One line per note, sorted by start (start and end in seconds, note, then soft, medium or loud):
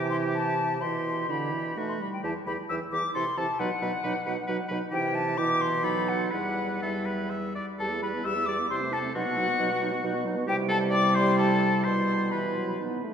0.00 0.83 C3 loud
0.00 0.77 E3 loud
0.00 0.65 E4 medium
0.00 0.76 G4 medium
0.10 0.16 C6 loud
0.34 0.82 A5 loud
0.81 1.76 B2 medium
0.81 1.28 E3 medium
0.81 1.28 E4 medium
0.81 1.28 G4 medium
0.81 1.32 C6 medium
1.28 1.54 D3 medium
1.28 1.75 E4 medium
1.28 1.79 G4 medium
1.28 1.77 B5 medium
1.53 1.76 E3 medium
1.76 2.00 B2 medium
1.76 2.01 A3 medium
1.76 1.99 D#4 medium
1.76 2.00 F#4 medium
1.88 1.94 C6 medium
1.99 2.22 G3 medium
1.99 2.11 B5 medium
2.13 2.23 G5 medium
2.23 2.34 E2 medium
2.23 2.33 E3 medium
2.23 2.35 E4 medium
2.23 2.34 G4 medium
2.23 2.30 A5 medium
2.46 2.57 E2 medium
2.46 2.57 E3 medium
2.46 2.57 E4 medium
2.46 2.58 G4 medium
2.46 2.53 B5 medium
2.69 2.80 E2 medium
2.69 2.79 E3 medium
2.69 2.80 E4 medium
2.69 2.80 G4 medium
2.69 2.75 E6 loud
2.92 3.03 E2 medium
2.92 3.03 E3 medium
2.92 3.03 E4 medium
2.92 3.03 G4 medium
2.92 3.14 D6 loud
3.14 3.25 C3 medium
3.14 3.25 E3 medium
3.14 3.25 E4 medium
3.14 3.25 A4 medium
3.14 3.39 C6 loud
3.37 3.47 C3 medium
3.37 3.47 E3 medium
3.37 3.48 E4 medium
3.37 3.47 A4 medium
3.37 3.61 A5 loud
3.59 3.69 B2 medium
3.59 3.70 F#3 medium
3.59 3.70 D#4 medium
3.59 3.70 B4 medium
3.59 4.70 F#5 loud
3.82 3.92 B2 medium
3.82 3.92 F#3 medium
3.82 3.92 D#4 medium
3.82 3.92 B4 medium
4.03 4.14 B2 medium
4.03 4.14 F#3 medium
4.03 4.15 D#4 medium
4.03 4.13 B4 medium
4.25 4.37 B2 medium
4.25 4.36 F#3 medium
4.25 4.37 D#4 medium
4.25 4.35 B4 medium
4.47 4.58 B2 medium
4.47 4.58 F#3 medium
4.47 4.59 D#4 medium
4.47 4.57 B4 medium
4.68 4.81 B2 medium
4.68 4.80 F#3 medium
4.68 4.81 D#4 medium
4.68 4.79 B4 medium
4.90 5.40 C3 medium
4.90 5.34 E3 medium
4.90 5.35 E4 medium
4.90 5.34 G4 medium
4.90 5.16 G5 loud
5.15 5.39 A5 loud
5.38 6.32 B2 loud
5.38 5.86 E3 medium
5.38 5.85 E4 medium
5.38 5.85 G4 medium
5.38 5.63 D6 loud
5.61 5.86 C6 loud
5.83 6.32 F#3 medium
5.83 6.33 D#4 medium
5.83 6.33 A4 medium
5.83 6.10 B5 loud
6.08 6.32 F#5 loud
6.31 7.53 E2 medium
6.31 6.81 G3 medium
6.31 6.81 E4 medium
6.31 6.81 B4 medium
6.31 6.84 F#5 medium
6.82 7.54 G3 medium
6.82 7.54 E4 medium
6.82 7.08 A4 medium
6.82 7.31 E5 medium
7.06 7.32 B4 medium
7.30 7.55 E5 medium
7.55 7.66 D5 medium
7.79 8.20 E2 medium
7.79 7.92 G3 medium
7.79 7.92 G4 medium
7.79 8.01 A4 medium
7.79 7.86 A5 medium
7.90 8.04 B3 medium
7.90 8.04 E4 medium
8.02 8.15 G3 medium
8.02 8.16 G4 medium
8.02 8.27 B4 medium
8.02 8.08 B5 medium
8.13 8.24 B3 medium
8.13 8.24 E4 medium
8.24 8.65 E2 medium
8.24 8.37 G3 medium
8.24 8.37 G4 medium
8.24 8.48 E5 loud
8.24 8.47 E6 loud
8.36 8.49 B3 medium
8.36 8.47 E4 medium
8.46 8.60 G3 medium
8.46 8.59 G4 medium
8.46 8.58 D5 medium
8.46 8.69 D6 loud
8.58 8.69 B3 medium
8.58 8.68 E4 medium
8.68 9.10 C3 medium
8.68 8.83 C4 medium
8.68 8.82 E4 medium
8.68 8.95 C5 medium
8.68 8.76 C6 loud
8.81 8.94 A3 medium
8.81 8.93 C4 medium
8.91 9.05 C4 medium
8.91 9.05 E4 medium
8.91 9.14 A4 medium
8.91 8.99 A5 loud
9.04 9.14 A3 medium
9.04 9.15 C4 medium
9.15 9.54 B2 medium
9.15 9.27 F#3 medium
9.15 9.28 D#4 medium
9.15 10.23 F#4 loud
9.15 10.24 F#5 loud
9.26 9.39 B3 medium
9.26 9.38 F#4 medium
9.37 9.50 F#3 medium
9.37 9.50 D#4 medium
9.48 9.59 B3 medium
9.48 9.59 F#4 medium
9.59 9.98 B2 loud
9.59 9.73 F#3 medium
9.59 9.72 D#4 medium
9.70 9.83 B3 medium
9.70 9.84 F#4 medium
9.81 9.94 F#3 medium
9.81 9.93 D#4 medium
9.92 10.02 B3 medium
9.92 10.03 F#4 medium
10.03 10.43 B2 loud
10.03 10.16 F#3 medium
10.03 10.16 D#4 medium
10.14 10.27 B3 medium
10.14 10.28 F#4 medium
10.25 10.38 F#3 medium
10.25 10.39 D#4 medium
10.36 10.46 B3 medium
10.36 10.48 F#4 medium
10.47 11.82 C3 loud
10.47 11.81 G3 loud
10.47 11.82 E4 loud
10.47 10.57 G4 loud
10.47 10.55 G5 loud
10.68 10.79 A4 loud
10.68 10.77 A5 loud
10.90 11.16 D5 loud
10.90 11.17 D6 loud
11.15 11.37 C5 loud
11.15 11.38 C6 loud
11.38 11.85 A4 loud
11.38 11.86 A5 loud
11.84 13.01 B2 medium
11.84 12.32 G3 medium
11.84 12.32 E4 medium
11.84 12.31 C5 medium
11.84 12.33 C6 loud
12.31 12.58 E3 medium
12.31 12.81 E4 medium
12.31 12.78 B4 medium
12.31 12.79 B5 medium
12.56 12.79 F#3 medium
12.80 13.03 B3 medium
12.80 13.03 D#4 medium
13.04 13.14 A3 medium